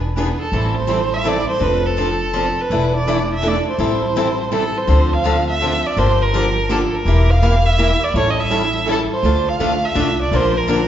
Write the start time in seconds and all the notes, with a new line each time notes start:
Already playing: E1
0.16 E3 B3 D4 G#4 B4
0.39 A4
0.52 A1 E3 G3 C4 E4 A4
0.77 C5
0.90 E3 G3 C4 E4 A4
1.14 E5
1.25 E3 G3 C4 E4 A4 D5
1.49 C5
1.61 F1 F3 C4 D4 A4 B4
1.86 A4
1.97 F3 C4 D4 A4
2.36 F3 C4 D4 A4
2.61 B4
2.70 E1 E3 A3 D4 E4 A4
2.96 D5
3.07 E3 A3 D4 E4 A4
3.35 E5
3.42 E3 A3 D4 E4
3.46 A3 A4 D5
3.70 C5
3.79 A1 E3 G3 C4 E4 A4
4.16 E3 G3 C4 E4 A4
4.51 E3 G3 C4 E4 A4
4.55 A4
4.77 C5
4.88 D2 D3 F3 C4 D4 A4
5.13 F5
5.25 D3 F3 C4 D4 A4
5.50 E5
5.62 D3 F3 C4 D4 A4
5.87 D5
5.97 G1 D3 F3 A#3 D4 G4 C5
6.22 A#4
6.33 D3 F3 A#3 D4 G4
6.69 D3 F3 A#3 D4 G4 A4
6.84 A4
6.95 A#4
7.05 E1 E3 A#3 E4 G4
7.30 F5
7.42 E3 A#3 E4 G4
7.66 E5
7.78 E3 A#3 E4 G4
8.04 D5
8.14 A1 E3 G3 C#4 E4 A4 C#5
8.31 D#5
8.40 E5
8.50 E3 G3 C#4 E4 A4
8.85 E3 G3 C#4 E4 A4
8.92 A4
9.14 C5
9.22 D2 D3 A3 D4 F4 A4
9.49 F5
9.59 D2 D3 A3 D4 F4 A4
9.85 E5
9.95 C2 D3 A3 D4 F4 A4
10.22 D5
10.31 A#1 D3 F3 A#3 D4 A#4
10.36 C5
10.57 A#4
10.69 D3 F3 A#3 D4 A#4